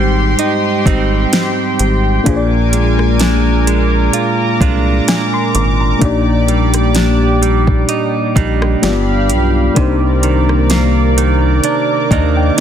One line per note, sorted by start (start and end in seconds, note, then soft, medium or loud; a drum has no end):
0.00 0.35 G#1 loud
0.00 2.26 G#2 medium
0.00 0.85 G3 medium
0.00 2.21 G#3 medium
0.00 0.85 C4 medium
0.00 2.22 C4 medium
0.00 2.23 D#4 medium
0.00 2.22 G4 medium
0.00 2.23 G4 medium
0.00 2.28 C5 medium
0.00 2.22 G5 medium
0.00 2.22 C6 medium
0.39 0.86 D#4 medium
0.39 closed hi-hat medium
0.86 1.26 G#1 medium
0.86 2.37 G3 medium
0.86 2.37 C4 medium
0.86 2.37 D#4 medium
0.86 kick medium
0.86 closed hi-hat medium
1.33 snare loud
1.33 closed hi-hat medium
1.79 2.19 G#1 medium
1.79 closed hi-hat medium
2.24 4.10 A#1 loud
2.24 6.00 A#2 medium
2.24 5.96 A#3 medium
2.24 5.97 D4 medium
2.24 5.98 F4 medium
2.24 5.98 A#4 medium
2.24 4.12 G#5 medium
2.24 8.79 D6 loud
2.24 kick loud
2.24 closed hi-hat medium
2.28 5.98 G#4 medium
2.28 2.35 C5 medium
2.36 6.02 D5 medium
2.73 3.66 G#3 medium
2.73 closed hi-hat medium
2.99 cross-stick medium
3.20 4.61 D4 medium
3.20 snare loud
3.20 closed hi-hat medium
3.67 4.60 G#3 medium
3.67 closed hi-hat medium
4.13 4.61 F4 medium
4.13 5.99 A#5 medium
4.13 closed hi-hat medium
4.61 5.00 C2 medium
4.61 6.12 G#3 medium
4.61 6.95 D4 medium
4.61 6.12 F4 medium
4.61 kick loud
4.61 closed hi-hat medium
5.08 5.32 G#5 medium
5.08 snare loud
5.08 closed hi-hat medium
5.34 5.54 C6 medium
5.55 5.94 G#1 loud
5.55 5.79 D6 medium
5.55 closed hi-hat medium
5.80 6.25 A#5 medium
5.99 7.85 A#1 loud
5.99 8.83 A#2 medium
5.99 8.78 A#3 medium
5.99 8.78 D4 medium
5.99 8.79 D#4 medium
5.99 8.80 G4 medium
5.99 8.80 D5 medium
5.99 kick loud
5.99 closed hi-hat medium
6.04 8.80 G4 medium
6.04 8.80 D5 medium
6.48 7.42 G3 medium
6.48 closed hi-hat soft
6.74 cross-stick medium
6.74 closed hi-hat medium
6.95 8.36 D4 medium
6.95 snare loud
6.95 closed hi-hat medium
7.42 8.35 G3 medium
7.42 closed hi-hat medium
7.67 kick medium
7.89 8.36 D#4 medium
7.89 closed hi-hat medium
8.36 8.76 A#1 medium
8.36 10.23 G3 medium
8.36 9.80 D4 medium
8.36 8.93 D#4 medium
8.36 kick medium
8.36 closed hi-hat medium
8.62 cross-stick medium
8.82 9.32 G1 loud
8.82 9.87 G2 medium
8.82 8.89 G#3 medium
8.82 9.75 D4 medium
8.82 9.77 F4 medium
8.82 9.75 G4 medium
8.82 9.77 G4 medium
8.82 9.78 D5 medium
8.82 9.75 F5 medium
8.82 9.75 B5 medium
8.82 snare loud
8.82 closed hi-hat medium
8.88 9.79 B3 medium
9.30 9.70 B1 loud
9.30 closed hi-hat medium
9.74 11.60 C2 loud
9.74 12.60 C3 medium
9.74 12.60 A#3 medium
9.74 12.60 D4 medium
9.74 12.60 D#4 medium
9.74 12.60 A#4 medium
9.74 12.60 D5 medium
9.74 12.60 D6 medium
9.74 kick loud
9.74 closed hi-hat medium
9.79 12.60 G4 medium
9.79 12.60 C5 medium
10.23 11.17 D#3 medium
10.23 closed hi-hat medium
10.49 cross-stick medium
10.70 12.11 A#3 medium
10.70 snare loud
10.70 closed hi-hat medium
11.18 12.11 D#3 medium
11.18 closed hi-hat medium
11.64 12.11 D4 medium
11.64 closed hi-hat medium
12.11 12.51 D#2 medium
12.11 12.60 D#3 medium
12.11 12.60 A#3 medium
12.11 12.60 D4 medium
12.11 12.35 D#5 medium
12.11 kick loud
12.11 closed hi-hat medium
12.37 12.60 G5 medium